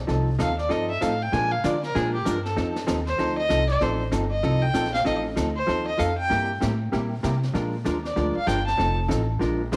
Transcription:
0.07 C2 F3 C4 D#4 A4, brush sweep, snare
0.39 D#2 F3 C4 D#4 A4 F5, snare, hi-hat pedal
0.59 D5, snare
0.69 G2 F3 C4 D#4 A4 D#5, brush sweep, snare
0.90 E5
1.01 A2 F3 C4 D#4 A4 F5, snare, hi-hat pedal
1.23 G5
1.32 A#2 F3 G#3 D4 F4 A#4 G#5, brush sweep, snare
1.52 F5
1.64 D3 F3 G#3 D4 F4 A#4 D5, snare, hi-hat pedal
1.83 A#4, snare
1.95 A#2 F3 G#3 D4 F4 G#4 A#4, brush sweep, snare
2.14 G4
2.25 G2 F3 G#3 D4 F4 A#4, snare, hi-hat pedal
2.45 A4, snare
2.56 F2 F3 C4 D#4 A4, brush sweep, snare
2.76 snare
2.87 D#2 F3 C4 D#4 A4, snare, hi-hat pedal
3.07 C5, snare
3.18 D2 F3 C4 D#4 A4, brush sweep, snare
3.38 D#5
3.49 C2 F3 C4 D#4 A4, snare, hi-hat pedal
3.69 D5, snare
3.81 A1 F3 C4 D#4 A4 C5, brush sweep, snare
4.12 G1 F3 C4 D#4 A4, snare, hi-hat pedal
4.31 D#5
4.43 C2 F3 C4 D#4 A4, brush sweep, snare
4.62 G5
4.74 A#1 F3 C4 D#4 A4, snare, hi-hat pedal
4.85 snare
4.94 F5, snare
5.04 A1 F3 C4 D#4 A4 D#5, brush sweep, snare
5.36 D2 F3 C4 D#4 A4, snare, hi-hat pedal
5.56 C5
5.67 D#2 F3 C4 D#4 A4, brush sweep, snare
5.87 D#5
5.98 F2 F3 C4 D#4 A4 F5, snare, hi-hat pedal
6.18 G5
6.30 G2 C3 G3 A#3 E4 G4, brush sweep, snare
6.61 A2 C3 G3 A#3 E4 G4, snare, hi-hat pedal
6.92 A#2 C3 G3 A#3 E4 G4, brush sweep, snare
7.23 C3 G3 A#3 E4 G4, snare, hi-hat pedal
7.43 snare
7.54 A#2 F3 G#3 D4 F4 A#4, brush sweep, snare
7.85 D#2 F3 G#3 D4 F4 A#4, snare, hi-hat pedal
8.04 D5, snare
8.16 D2 F3 G#3 D4 F4 A#4, brush sweep, snare
8.36 F5, muted upright bass stroke
8.47 G1 F3 G#3 D4 F4 A#4 G5, snare, hi-hat pedal
8.66 A5, snare
8.78 F1 F3 C4 D#4 A4, brush sweep, snare
9.08 A1 F3 C4 D#4 A4, snare, hi-hat pedal
9.39 A#1 F3 G#3 D4 F4 A#4, brush sweep, snare
9.72 D2 F3 G#3 D4 F4 A#4 C5, snare, hi-hat pedal

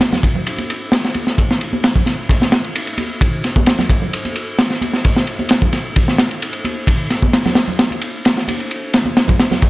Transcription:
0.01 snare, ride
0.13 snare, low conga
0.23 kick, ride
0.35 low conga
0.47 ride
0.58 ride, high conga
0.70 ride
0.92 snare, ride
1.05 snare
1.14 ride, high conga
1.27 snare
1.38 kick, ride
1.51 snare
1.61 ride
1.73 high conga
1.84 snare, ride
1.96 kick, low conga
2.06 snare, ride
2.29 kick, ride
2.41 snare, high conga
2.52 snare, ride
2.64 ride
2.75 ride
2.87 ride
2.98 ride, high conga
3.21 kick, ride
3.44 snare, ride
3.56 kick, high conga
3.66 snare, ride
3.79 snare, low conga
3.90 kick, ride
4.02 low conga
4.13 ride
4.25 ride, high conga
4.36 ride
4.59 snare, ride
4.70 snare
4.81 ride, high conga
4.93 snare
5.05 kick, ride
5.16 snare
5.27 ride
5.39 high conga
5.49 snare, ride
5.62 kick, low conga
5.73 snare, ride
5.96 kick, ride
6.08 snare, high conga
6.18 snare, ride
6.31 ride
6.42 ride
6.53 ride
6.65 ride, high conga
6.87 kick, ride
7.10 snare, ride
7.22 kick, high conga
7.33 snare, ride
7.46 snare, low conga
7.55 snare, ride
7.68 low conga
7.79 snare, ride
7.91 ride, high conga
8.02 ride
8.25 snare, ride
8.37 snare
8.48 ride, high conga
8.60 ride
8.71 ride
8.94 snare, ride
9.05 high conga
9.17 snare, ride
9.28 kick, low conga
9.40 snare, ride
9.51 snare, low conga
9.62 kick, ride

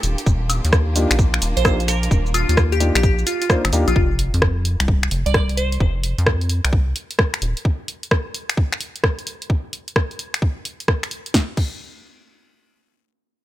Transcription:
Already playing: G4
0.03 D#1 A#3 D4 F4, open hi-hat, shaker
0.18 closed hi-hat, shaker
0.26 D#1, kick, shaker
0.50 open hi-hat, high woodblock, shaker
0.65 D#2, closed hi-hat, shaker
0.73 kick, cross-stick, shaker
0.96 A#3 D4 D#4 F4 G4, open hi-hat, shaker
1.11 A#1, finger snap, closed hi-hat, shaker
1.19 kick, shaker
1.34 finger snap
1.42 D#1, open hi-hat, shaker
1.57 A#1 C5, closed hi-hat, shaker
1.65 A#3 D4 D#4 F4 G4 C5, kick, cross-stick, high woodblock, shaker
1.80 closed hi-hat, shaker
1.88 A#4, finger snap, open hi-hat, shaker
2.03 closed hi-hat, shaker
2.11 D#1, kick, shaker
2.26 shaker
2.34 F4, open hi-hat, high woodblock, shaker
2.49 D#2 F4, closed hi-hat, shaker
2.57 kick, cross-stick, shaker
2.72 G4, closed hi-hat, shaker
2.80 A#3 D4 D#4 F4 G4, open hi-hat, shaker
2.95 A#1 G4, finger snap, closed hi-hat, shaker
3.03 G4, kick, shaker
3.18 shaker
3.27 F4, open hi-hat, shaker
3.42 F4, closed hi-hat, shaker
3.50 A#3 D4 D#4 F4 C5, kick, cross-stick, shaker
3.65 G1, finger snap, closed hi-hat, high woodblock, shaker
3.73 D#2 A#3 D4 D#4 F4 G4, open hi-hat, shaker
3.88 A#1 F4, closed hi-hat, high woodblock, shaker
3.96 F1 F4, kick, sub drop
4.19 open hi-hat
4.34 F2, closed hi-hat
4.42 kick, cross-stick
4.65 open hi-hat
4.80 C2, finger snap, closed hi-hat
4.88 kick
5.03 finger snap
5.11 F1, open hi-hat
5.26 C2 D5, closed hi-hat
5.34 D5, kick, cross-stick
5.49 closed hi-hat
5.57 C5, open hi-hat
5.72 closed hi-hat
5.80 F1, kick
6.04 open hi-hat
6.18 F2, closed hi-hat
6.26 kick, cross-stick
6.41 closed hi-hat
6.49 open hi-hat
6.65 C2, finger snap, closed hi-hat
6.73 kick
6.96 open hi-hat
7.11 closed hi-hat
7.19 kick, cross-stick
7.34 finger snap, closed hi-hat
7.42 D#1, open hi-hat
7.57 closed hi-hat
7.65 kick
7.88 open hi-hat
8.03 closed hi-hat
8.11 kick, cross-stick
8.34 open hi-hat
8.49 finger snap, closed hi-hat
8.57 kick
8.72 finger snap
8.81 open hi-hat
8.96 closed hi-hat
9.04 kick, cross-stick
9.19 closed hi-hat
9.27 open hi-hat
9.42 closed hi-hat
9.50 kick
9.73 open hi-hat
9.88 closed hi-hat
9.96 kick, cross-stick
10.11 closed hi-hat
10.19 open hi-hat
10.34 finger snap, closed hi-hat
10.42 kick
10.65 open hi-hat
10.80 closed hi-hat
10.88 kick, cross-stick
11.03 finger snap, closed hi-hat
11.11 open hi-hat
11.26 closed hi-hat
11.34 kick, snare
11.57 kick, crash

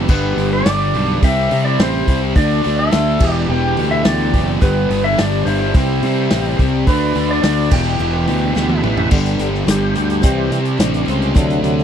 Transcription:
0.08 G1 G2 D3 G3 B3 D4 G4 B4, kick, crash
0.37 G1 G2 D3 G3, snare, open hi-hat
0.53 D4 D5
0.66 G1 G2 D3 G3 B3 D4 G4, snare, open hi-hat
0.94 B1 G2 D3 G3, open hi-hat
1.22 C2 C3 E3 G3 C4 E4 G4 C5 E5, kick, open hi-hat
1.51 C3 G3 C4, open hi-hat
1.65 E4 D5
1.79 A1 C3 E3 G3 C4 E4 G4 C5, snare, open hi-hat
2.07 C2 C3 G3 C4 E4 G4, kick, open hi-hat
2.35 D2 D3 A3 D4 F#4 A4 D5, kick, open hi-hat
2.64 D2 D3 A3 D4, snare, open hi-hat
2.79 A4 E5
2.91 D2 D3 A3 D4 F#4, snare, open hi-hat
3.19 E1 E2 B2 E3 G3 B3 E4 G4 B4, kick, crash
3.29 G4
3.33 D5
3.49 E1 E2 B2 E3 G4 G5
3.77 D2 E2 B2 E3, open hi-hat
3.91 E4 E5
4.04 D2 E2 B2 E3 G3 B3 G4 D5, snare, open hi-hat
4.33 F#1 E2 B2 E3 G3 B3 G4, kick, open hi-hat
4.61 G1 G2 D3 G3 B3 D4 G4 B4, kick, open hi-hat
4.90 G1 G2 D3 G3, snare, open hi-hat
5.04 E4 E5
5.17 G1 G2 D3 G3 B3 D4 G4 D5, snare, open hi-hat
5.45 G1 G2 D3 G3 B3 D4 E4 G4 C5, open hi-hat
5.74 C2 C3 E3 G3 C4 E4 G4 C5, kick, open hi-hat
6.02 C3 G3 C4, open hi-hat
6.30 A1 C3 E3 G3 C4 G4, snare, open hi-hat
6.59 C2 C3 G3 C4 G4, kick, open hi-hat
6.87 D2 D3 A3 D4 F#4 A4 B4 D5, kick, open hi-hat
7.15 D2 D3 A3 D4, open hi-hat
7.29 D4 D5
7.43 D2 D3 A3 D4 F#4 D5, snare, open hi-hat
7.70 E1 E2 B2 E3 G3 B3 E4 G4 B4 E5 G5, kick, crash
7.74 E3
7.99 E1 E2 B2 E3 G3 B3 E4
8.27 D2 E2 B2 E3, open hi-hat
8.55 D2 E2 B2 E3 G3 B3 E4, snare
8.69 high tom
8.83 A1 E2 B2 E3 G3 B3 E4, mid tom
8.97 floor tom
9.11 G1 G2 D3 G3 B3 D4 G4, kick, crash
9.26 closed hi-hat
9.39 G1 G2 D3 G3, closed hi-hat
9.54 snare
9.66 G1 G2 D3 G3 B3 D4 F#4 G4, snare, closed hi-hat
9.70 G4
9.95 D2 G2 D3 G3 B3 D4 G4, closed hi-hat
10.09 closed hi-hat
10.21 C2 C3 E3 G3 C4 E4, kick, closed hi-hat
10.51 C3 G3 C4, closed hi-hat
10.65 closed hi-hat
10.78 A1 C3 E3 G3 C4 D4 E4, snare, closed hi-hat
10.94 closed hi-hat
11.05 C#2 C3 G3 C4 E4, closed hi-hat
11.10 C4
11.22 closed hi-hat
11.34 D2 C3 D3 F#3 A3 D4 F#4, kick, closed hi-hat
11.50 closed hi-hat
11.63 D2 D3 A3 D4, closed hi-hat
11.78 snare

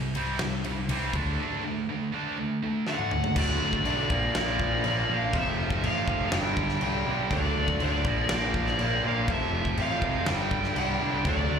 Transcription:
Already playing: C2 C3 G3
0.15 C2 C3 G3 C4, ride
0.39 C2 C3 G3, snare, ride
0.64 C3 G3, ride
0.89 C2 C3 G3 C4, ride
1.13 D2 D3 A3 D4, kick, ride
1.39 D3 A3 D4
1.64 D3 A3
1.90 D3 A3
2.14 D3 A3 D4
2.39 D3 A3
2.63 D3 A3
2.87 D3 A3 D4 F#5, snare
2.99 high tom
3.11 D3 A3, mid tom
3.24 floor tom
3.36 D2 D3 F#3 A3 D4 F#4 D5, kick, crash
3.62 D2
3.73 kick
3.85 B1 D3 F#3 A3 D4 F#4 D5, crash
4.10 A#1 A#2 F3 A#3 D4, kick
4.35 A#1 A#2 F3 A#3 D4 D5, snare, crash
4.60 A#1, kick
4.84 A#1 A#2 F3 A#3 D4, crash
5.09 A#1 A#2 F3 A#3 D4 F5
5.33 F1 F2 C3 F3 A3 C4 E5, kick, crash
5.59 F1
5.70 kick
5.82 A1 F2 C3 F3 A3 C4 F5, crash
6.07 F1 F2 C3 F3 A3 C4, kick
6.31 G1 G2 D3 G3 B3 D4 G5, snare, crash
6.57 G1, kick
6.69 snare
6.81 C2 G2 D3 G3 B3 D4 G5, crash
7.05 B1 G2 D3 G3 B3 D4
7.31 D2 D3 F#3 A3 D4 D5, kick, crash
7.56 D2
7.68 kick
7.79 D2 D3 F#3 A3 D4, crash
7.83 D5
8.05 A#1 A#2 F3 A#3 D4, kick
8.29 A#1 A#2 F3 A#3 D4, snare, crash
8.33 D5
8.54 A#1, kick
8.67 snare
8.79 A#1 A#2 F3 A#3 D4, crash
9.03 A#1 A#2 F3 A#3 D4
9.07 F5
9.28 F1 F2 C3 F3 A3 C4, kick, crash
9.32 E5
9.53 F1
9.65 kick
9.76 A1 F2 C3 F3 A3 C4, crash
9.82 F5
10.01 F1 F2 C3 F3 A3 C4, kick
10.26 G1 G2 D3 G3 B3 D4 G5, snare, crash
10.51 G1, kick
10.64 snare
10.76 C2 G2 D3 G3 B3 D4 G5, crash
11.00 C2 G2 D3 G3 B3 D4
11.25 D2 D3 F#3 A3 D4 D5, kick, crash
11.51 D2

